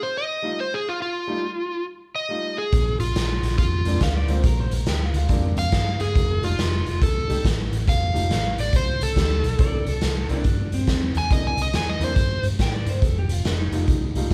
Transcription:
0.03 electric slide guitar C5
0.17 electric slide guitar D#5
0.42 grand piano G3 A3 D#4 F4
0.60 electric slide guitar C5
0.74 electric slide guitar G#4
0.89 electric slide guitar F4
1.02 electric slide guitar F4
1.27 grand piano G3 A3 D#4 F4
2.16 electric slide guitar D#5
2.29 grand piano G3 A3 D#4 F4
2.58 electric slide guitar G#4
2.73 fingered electric bass A#1, kick, closed hi-hat
3.00 fingered electric bass A#1, electric slide guitar F4, closed hi-hat
3.15 fingered electric bass A#1, snare, closed hi-hat
3.43 fingered electric bass A#1, snare, closed hi-hat
3.58 fingered electric bass F2, electric slide guitar F4, kick, closed hi-hat
3.85 fingered electric bass F2, grand piano G#3 A#3 C4 D4, closed hi-hat
4.01 fingered electric bass D2, clean electric guitar F5, kick, snare, closed hi-hat
4.17 clean electric guitar D5
4.27 fingered electric bass D2, grand piano G#3 A#3 C4 F4, clean electric guitar C5, closed hi-hat
4.44 fingered electric bass A#1, clean electric guitar A#4, kick, closed hi-hat
4.60 clean electric guitar C5
4.71 fingered electric bass A#1, clean electric guitar A#4, closed hi-hat
4.86 fingered electric bass D2, clean electric guitar G4, snare, closed hi-hat
5.04 clean electric guitar F4
5.14 fingered electric bass D2, clean electric guitar F4, closed hi-hat
5.27 fingered electric bass F2, grand piano G#3 A#3 C4 D4, kick, closed hi-hat
5.57 fingered electric bass F2, electric slide guitar F5, closed hi-hat
5.72 fingered electric bass G2, kick, snare, closed hi-hat
6.00 fingered electric bass G2, electric slide guitar G#4, closed hi-hat
6.14 fingered electric bass F1, grand piano G#3 A#3 E4 F#4, kick, closed hi-hat
6.43 fingered electric bass F1, grand piano G3 A3 D#4 F4, electric slide guitar F4, closed hi-hat
6.58 fingered electric bass F1, snare, closed hi-hat
6.86 fingered electric bass F1, closed hi-hat
7.02 fingered electric bass C2, electric slide guitar A4, kick, closed hi-hat
7.28 fingered electric bass C2, grand piano G3 A3 D#4 G4, closed hi-hat
7.45 fingered electric bass A1, kick, snare, closed hi-hat
7.73 fingered electric bass A1, closed hi-hat
7.88 fingered electric bass F1, electric slide guitar F5, kick, closed hi-hat
8.14 fingered electric bass F1, grand piano G3 A3 D#4 F4, closed hi-hat
8.30 fingered electric bass A1, snare, closed hi-hat
8.58 fingered electric bass A1, electric slide guitar D5, closed hi-hat
8.73 fingered electric bass C2, electric slide guitar C5, kick, closed hi-hat
9.01 fingered electric bass C2, electric slide guitar A4, closed hi-hat
9.15 fingered electric bass D2, grand piano G3 A3 D#4 G4, kick, snare, closed hi-hat
9.43 fingered electric bass B1, closed hi-hat
9.59 fingered electric bass C2, grand piano A#3 C4 D4 E4, clean electric guitar D5, kick, closed hi-hat
9.86 fingered electric bass C2, clean electric guitar A4, closed hi-hat
10.01 fingered electric bass C2, snare, closed hi-hat
10.28 fingered electric bass C2, grand piano A#3 C4 D4 E4, clean electric guitar D4, closed hi-hat
10.44 fingered electric bass G2, kick, closed hi-hat
10.72 fingered electric bass G2, clean electric guitar C4, closed hi-hat
10.87 fingered electric bass E2, kick, snare, closed hi-hat
11.15 fingered electric bass E2, electric slide guitar G#5, closed hi-hat
11.30 fingered electric bass C2, grand piano A#3 C4 D4 E4, electric slide guitar D#5, kick, closed hi-hat
11.47 electric slide guitar G#5
11.57 fingered electric bass C2, closed hi-hat
11.62 electric slide guitar D#5
11.73 fingered electric bass E2, electric slide guitar G#5, snare, closed hi-hat
11.90 electric slide guitar D#5
12.00 fingered electric bass E2, grand piano A#3 C4 D4 E4, closed hi-hat
12.04 electric slide guitar C5
12.16 fingered electric bass G2, kick, closed hi-hat
12.43 fingered electric bass G2, closed hi-hat
12.59 fingered electric bass A2, clean electric guitar G5, kick, snare, closed hi-hat
12.74 clean electric guitar D5
12.86 fingered electric bass G2, clean electric guitar C5, closed hi-hat
13.02 fingered electric bass F1, clean electric guitar A4, kick, closed hi-hat
13.19 clean electric guitar G4
13.29 fingered electric bass F1, clean electric guitar F4, closed hi-hat
13.44 fingered electric bass F1, clean electric guitar D4, snare, closed hi-hat
13.59 clean electric guitar D#4
13.71 fingered electric bass F1, grand piano G3 A3 D#4 F4, closed hi-hat
13.88 fingered electric bass C2, kick, closed hi-hat
14.15 fingered electric bass C2, grand piano G3 A3 D#4 F4, closed hi-hat
14.31 kick

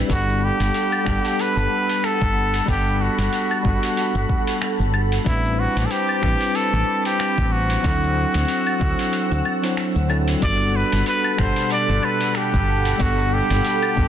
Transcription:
Already playing: tine electric piano G3 C4 D4 E4 B4 D5, analog synth pad B5
0.08 fretless electric bass G1, tine electric piano G3 B3 D4 A4 F#5, muted trumpet F#4, analog synth pad A4 F#5, kick, open hi-hat, shaker
0.28 shaker
0.44 muted trumpet G4
0.60 fretless electric bass G1, open hi-hat, shaker
0.74 open hi-hat, shaker
0.92 claves, shaker
1.05 fretless electric bass G1, tine electric piano G3 B3 D4 A4 F#5, finger snap, kick
1.25 open hi-hat, shaker
1.39 muted trumpet B4, open hi-hat, shaker
1.57 fretless electric bass G1, shaker
1.90 open hi-hat, shaker
2.04 muted trumpet A4, finger snap, open hi-hat, shaker
2.21 fretless electric bass G1, kick, shaker
2.54 open hi-hat, shaker
2.66 fretless electric bass G1, tine electric piano G3 B3 D4 A4 F#5, muted trumpet G4, kick, open hi-hat, shaker
2.87 shaker
3.01 muted trumpet F#4
3.18 fretless electric bass G1, open hi-hat, shaker
3.33 open hi-hat, shaker
3.51 claves, shaker
3.63 fretless electric bass G1, tine electric piano G3 B3 D4 F#4 A4, kick
3.83 open hi-hat, shaker
3.97 open hi-hat, shaker
4.15 fretless electric bass G1, shaker
4.29 kick
4.47 open hi-hat, shaker
4.62 finger snap, open hi-hat, shaker
4.79 fretless electric bass G1, shaker
4.94 claves
5.12 open hi-hat, shaker
5.25 fretless electric bass A1, tine electric piano G3 C4 D4 E4 B4, analog synth pad C4 A5 D6, muted trumpet E4, kick, open hi-hat, shaker
5.45 shaker
5.60 muted trumpet F#4
5.76 fretless electric bass A1, open hi-hat, shaker
5.86 muted trumpet A4
5.91 muted trumpet G4, open hi-hat, shaker
6.09 claves, shaker
6.21 fretless electric bass A1, tine electric piano G3 C4 D4 E4 B4, finger snap, kick
6.41 open hi-hat, shaker
6.55 muted trumpet A4, open hi-hat, shaker
6.73 fretless electric bass A1, shaker
7.05 muted trumpet G4, open hi-hat, shaker
7.20 finger snap, open hi-hat, shaker
7.38 fretless electric bass A1, kick, shaker
7.52 muted trumpet F#4
7.70 open hi-hat, shaker
7.83 fretless electric bass D2, tine electric piano F#3 C4 D4 E4 A4, analog synth pad F#5 E6, kick, open hi-hat, shaker
8.03 shaker
8.34 fretless electric bass D2, open hi-hat, shaker
8.48 open hi-hat, shaker
8.67 claves, shaker
8.79 fretless electric bass D2, tine electric piano F#3 C4 D4 E4 A4, kick
8.99 open hi-hat, shaker
9.13 open hi-hat, shaker
9.32 fretless electric bass D2, shaker
9.45 claves
9.63 tine electric piano F#3 C4 D4 E4 C5, open hi-hat, shaker
9.77 finger snap, open hi-hat, shaker
9.96 fretless electric bass D2, shaker
10.09 tine electric piano F#3 C4 D4 E4 A4, claves
10.28 open hi-hat, shaker
10.40 fretless electric bass G1, tine electric piano G3 B3 D4 F#4 A4, analog synth pad A4 F#5 B5, muted trumpet D5, kick, open hi-hat, shaker
10.61 shaker
10.76 muted trumpet B4
10.92 fretless electric bass G1, open hi-hat, shaker
11.06 muted trumpet B4, open hi-hat, shaker
11.24 claves, shaker
11.37 fretless electric bass G1, tine electric piano B2 G3 D4 A4 F#5, muted trumpet C5, finger snap, kick
11.56 open hi-hat, shaker
11.70 muted trumpet D5, open hi-hat, shaker
11.89 fretless electric bass G1, shaker
12.03 muted trumpet B4, claves
12.21 open hi-hat, shaker
12.35 muted trumpet G4, finger snap, open hi-hat, shaker
12.54 fretless electric bass G1, kick, shaker
12.85 open hi-hat, shaker
12.98 fretless electric bass G1, tine electric piano G3 B3 D4 A4 F#5, muted trumpet F#4, kick, open hi-hat, shaker
13.19 shaker
13.33 muted trumpet G4
13.50 fretless electric bass G1, open hi-hat, shaker
13.65 open hi-hat, shaker
13.83 claves, shaker
13.96 fretless electric bass G1, tine electric piano G3 B3 D4 A4 F#5, kick

